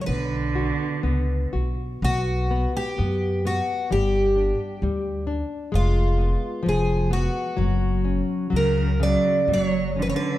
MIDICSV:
0, 0, Header, 1, 5, 480
1, 0, Start_track
1, 0, Tempo, 966184
1, 38, Time_signature, 2, 2, 24, 8
1, 1479, Tempo, 918836
1, 3399, Tempo, 949367
1, 5286, End_track
2, 0, Start_track
2, 0, Title_t, "Twelve-string acoustic guitar"
2, 0, Program_c, 0, 25
2, 7, Note_on_c, 0, 73, 56
2, 29, Note_off_c, 0, 73, 0
2, 31, Note_on_c, 0, 71, 76
2, 736, Note_off_c, 0, 71, 0
2, 1015, Note_on_c, 0, 66, 90
2, 1348, Note_off_c, 0, 66, 0
2, 1374, Note_on_c, 0, 67, 95
2, 1733, Note_off_c, 0, 67, 0
2, 1735, Note_on_c, 0, 66, 83
2, 1955, Note_off_c, 0, 66, 0
2, 1974, Note_on_c, 0, 67, 84
2, 2663, Note_off_c, 0, 67, 0
2, 2930, Note_on_c, 0, 65, 81
2, 3414, Note_off_c, 0, 65, 0
2, 3416, Note_on_c, 0, 68, 80
2, 3638, Note_off_c, 0, 68, 0
2, 3640, Note_on_c, 0, 66, 83
2, 4329, Note_off_c, 0, 66, 0
2, 4365, Note_on_c, 0, 70, 77
2, 4598, Note_off_c, 0, 70, 0
2, 4600, Note_on_c, 0, 74, 89
2, 4845, Note_off_c, 0, 74, 0
2, 4856, Note_on_c, 0, 73, 92
2, 5095, Note_off_c, 0, 73, 0
2, 5102, Note_on_c, 0, 71, 82
2, 5126, Note_off_c, 0, 71, 0
2, 5139, Note_on_c, 0, 73, 69
2, 5161, Note_off_c, 0, 73, 0
2, 5173, Note_on_c, 0, 71, 76
2, 5286, Note_off_c, 0, 71, 0
2, 5286, End_track
3, 0, Start_track
3, 0, Title_t, "Nylon-string guitar"
3, 0, Program_c, 1, 24
3, 40, Note_on_c, 1, 59, 60
3, 275, Note_on_c, 1, 66, 49
3, 507, Note_off_c, 1, 59, 0
3, 509, Note_off_c, 1, 66, 0
3, 513, Note_on_c, 1, 59, 51
3, 751, Note_off_c, 1, 59, 0
3, 759, Note_on_c, 1, 66, 46
3, 995, Note_off_c, 1, 66, 0
3, 1006, Note_on_c, 1, 59, 55
3, 1240, Note_off_c, 1, 59, 0
3, 1246, Note_on_c, 1, 59, 46
3, 1473, Note_off_c, 1, 59, 0
3, 1481, Note_on_c, 1, 59, 54
3, 1718, Note_off_c, 1, 59, 0
3, 1727, Note_on_c, 1, 59, 52
3, 1960, Note_off_c, 1, 59, 0
3, 1965, Note_on_c, 1, 55, 54
3, 2201, Note_on_c, 1, 62, 48
3, 2434, Note_off_c, 1, 62, 0
3, 2441, Note_off_c, 1, 55, 0
3, 2447, Note_on_c, 1, 55, 58
3, 2675, Note_off_c, 1, 55, 0
3, 2676, Note_on_c, 1, 62, 56
3, 2908, Note_off_c, 1, 62, 0
3, 2912, Note_on_c, 1, 56, 59
3, 3152, Note_on_c, 1, 59, 47
3, 3386, Note_on_c, 1, 53, 58
3, 3389, Note_off_c, 1, 59, 0
3, 3621, Note_off_c, 1, 53, 0
3, 3628, Note_on_c, 1, 59, 51
3, 3848, Note_off_c, 1, 56, 0
3, 3860, Note_off_c, 1, 59, 0
3, 3861, Note_on_c, 1, 54, 55
3, 4104, Note_on_c, 1, 61, 45
3, 4328, Note_off_c, 1, 54, 0
3, 4334, Note_on_c, 1, 54, 50
3, 4337, Note_off_c, 1, 61, 0
3, 4574, Note_off_c, 1, 54, 0
3, 4585, Note_on_c, 1, 49, 46
3, 4823, Note_off_c, 1, 49, 0
3, 4829, Note_on_c, 1, 54, 53
3, 5072, Note_on_c, 1, 61, 44
3, 5286, Note_off_c, 1, 54, 0
3, 5286, Note_off_c, 1, 61, 0
3, 5286, End_track
4, 0, Start_track
4, 0, Title_t, "Cello"
4, 0, Program_c, 2, 42
4, 16, Note_on_c, 2, 52, 49
4, 36, Note_off_c, 2, 52, 0
4, 39, Note_on_c, 2, 50, 82
4, 740, Note_off_c, 2, 50, 0
4, 4344, Note_on_c, 2, 49, 75
4, 4570, Note_off_c, 2, 49, 0
4, 4588, Note_on_c, 2, 54, 74
4, 4815, Note_off_c, 2, 54, 0
4, 4830, Note_on_c, 2, 54, 77
4, 5058, Note_off_c, 2, 54, 0
4, 5085, Note_on_c, 2, 50, 74
4, 5115, Note_off_c, 2, 50, 0
4, 5117, Note_on_c, 2, 52, 62
4, 5148, Note_off_c, 2, 52, 0
4, 5153, Note_on_c, 2, 50, 74
4, 5286, Note_off_c, 2, 50, 0
4, 5286, End_track
5, 0, Start_track
5, 0, Title_t, "Upright bass"
5, 0, Program_c, 3, 32
5, 37, Note_on_c, 3, 35, 88
5, 348, Note_off_c, 3, 35, 0
5, 513, Note_on_c, 3, 37, 68
5, 738, Note_off_c, 3, 37, 0
5, 763, Note_on_c, 3, 35, 64
5, 984, Note_off_c, 3, 35, 0
5, 1005, Note_on_c, 3, 35, 94
5, 1313, Note_off_c, 3, 35, 0
5, 1485, Note_on_c, 3, 42, 80
5, 1799, Note_off_c, 3, 42, 0
5, 1970, Note_on_c, 3, 31, 95
5, 2279, Note_off_c, 3, 31, 0
5, 2442, Note_on_c, 3, 38, 85
5, 2750, Note_off_c, 3, 38, 0
5, 2922, Note_on_c, 3, 29, 95
5, 3234, Note_off_c, 3, 29, 0
5, 3403, Note_on_c, 3, 29, 82
5, 3709, Note_off_c, 3, 29, 0
5, 3868, Note_on_c, 3, 30, 87
5, 4178, Note_off_c, 3, 30, 0
5, 4345, Note_on_c, 3, 37, 74
5, 4661, Note_off_c, 3, 37, 0
5, 4827, Note_on_c, 3, 30, 87
5, 5145, Note_off_c, 3, 30, 0
5, 5286, End_track
0, 0, End_of_file